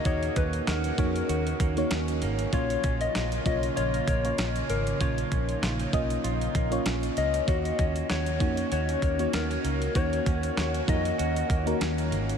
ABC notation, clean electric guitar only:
X:1
M:4/4
L:1/16
Q:"Swing 16ths" 1/4=97
K:Ebm
V:1 name="Clean electric guitar"
[B,DG]2 D2 G2 D2 G2 B,2 D2 B,2 | [F,F]2 D2 F2 D2 F2 B,2 D2 B,2 | [F,F]2 D2 F2 D2 F2 B,2 D2 B,2 | [B,G]2 D2 G2 D2 G2 B,2 C D B,2 |
[B,G]2 D2 G2 D2 G2 B,2 D2 B,2 |]